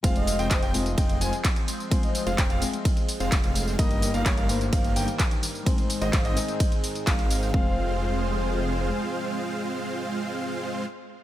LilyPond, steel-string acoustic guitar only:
\new Staff \with { instrumentName = "Steel-string acoustic guitar" } { \time 4/4 \key f \minor \tempo 4 = 128 <aes c' f' c''>4. <aes c' f' ees''>2~ <aes c' f' ees''>8 | <aes c' f' c''>4. <aes c' f' ees''>2~ <aes c' f' ees''>8 | <g, g bes ees' bes'>4. <g, g bes ees' c''>2~ <g, g bes ees' c''>8 | <aes, aes c' ees' c''>4. <aes, aes c' ees' ees''>2~ <aes, aes c' ees' ees''>8 |
<aes c' f' c''>1~ | <aes c' f' c''>1 | }